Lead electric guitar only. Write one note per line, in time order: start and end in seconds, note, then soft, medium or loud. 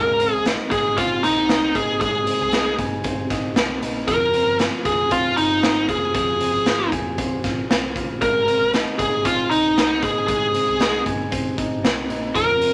0.00 0.42 A#4 medium
0.71 0.98 G#4 loud
0.97 1.24 F4 medium
1.24 1.77 D#4 medium
1.75 1.99 G#4 medium
2.01 2.75 G#4 medium
4.08 4.56 A#4 medium
4.86 5.10 G#4 medium
5.12 5.36 F4 medium
5.38 5.85 D#4 medium
5.89 6.14 G#4 medium
6.16 6.89 G#4 medium
8.22 8.70 A#4 loud
8.99 9.26 G#4 loud
9.25 9.50 F4 medium
9.51 10.04 D#4 medium
10.03 10.26 G#4 medium
10.27 11.02 G#4 medium
12.36 12.73 A#4 medium